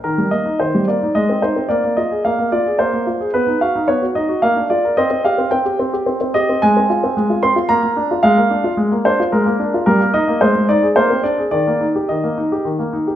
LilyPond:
\new Staff \with { instrumentName = "Grand piano" } { \time 3/4 \key ees \major \tempo 4 = 109 << { bes'8 ees''8 c''8 d''8 ees''8 c''8 | d''8 ees''8 f''8 d''8 c''4 | b'8 f''8 des''8 dis''8 f''8 d''8 | ees''8 f''8 g''8 r4 ees''8 |
aes''4. c'''8 bes''4 | f''4. c''8 bes'4 | bes'8 ees''8 c''8 d''8 c''8 d''8 | d''4 ees''4 r4 | } \\ { ees16 g16 bes16 ees'16 ees16 g16 bes16 ees'16 aes16 c'16 ees'16 c'16 | bes16 bes16 f'16 aes'16 bes16 bes16 f'16 aes'16 bes16 bes16 f'16 aes'16 | b16 dis'16 fis'16 dis'16 b16 fis'16 dis'16 fis'16 bes16 d'16 f'16 bes'16 | c'16 c'16 g'16 c'16 c'16 g'16 c'16 g'16 c'16 c'16 g'16 c'16 |
aes16 c'16 f'16 c'16 aes16 f'16 c'16 f'16 bes16 bes16 d'16 f'16 | aes16 bes16 d'16 f'16 aes16 bes16 d'16 f'16 aes16 bes16 d'16 f'16 | g16 bes16 ees'16 bes16 aes16 aes16 ees'16 aes'16 bes16 c'16 d'16 aes'16 | ees16 bes16 ees'16 g'16 ees16 bes16 ees'16 g'16 ees16 bes16 ees'16 g'16 | } >> }